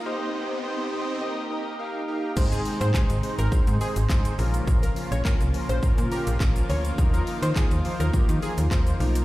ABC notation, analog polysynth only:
X:1
M:4/4
L:1/8
Q:1/4=104
K:Ab
V:1 name="Analog polysynth"
[EGce] [EGce] [EGce] [EGce] [EGBe] [EGBe] [EGBf] [EGBf] | [A,CEAc] [A,CEAc] [A,CEAc] [A,CEAc] [A,CEAc] [A,CEAc] [A,CEAc] [F,B,DFB]- | [F,B,DFB] [F,B,DFB] [F,B,DFB] [F,B,DFB] [F,B,DFB] [F,B,DFG] [F,B,DFB] [F,B,DFB] | [F,B,EFB] [F,B,EFB] [F,B,EFB] [F,B,EFc] [F,B,EFG] [F,B,EFB] [F,B,EFc] [F,B,EFB] |]